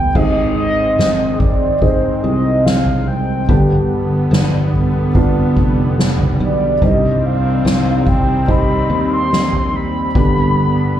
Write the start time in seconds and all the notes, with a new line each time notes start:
Already playing: G2 D3 G3 B3 D4 G4 G5
0.14 G#1 G#2 D#3 G#3 C4 D#4 G#4 D#5, kick, floor tom, crash
0.56 D#5
0.99 G#1, snare
1.39 D5, kick, floor tom
1.82 C4 D#4 G#4 C5, kick, floor tom
2.23 C2 D#5
2.65 F5, snare
2.86 floor tom
3.07 G5
3.48 G1 G2 D3 G3 B3 D4 G4, kick, floor tom
4.31 G1, snare
4.73 floor tom
5.15 B3 D4 F4, kick, floor tom
5.57 F1, kick
5.99 snare
6.19 floor tom
6.40 B1 D5
6.82 C2 G2 D#3 C4 D#4 G4 D#5, kick, floor tom
7.26 F5
7.65 C2, snare
8.07 G5, kick, floor tom
8.48 C4 D#4 G4 B5, kick, floor tom
8.90 D#2
9.13 C6
9.33 snare
9.53 floor tom
9.76 B5
10.14 G1 G2 D3 G3 B3 D4 G4, kick, floor tom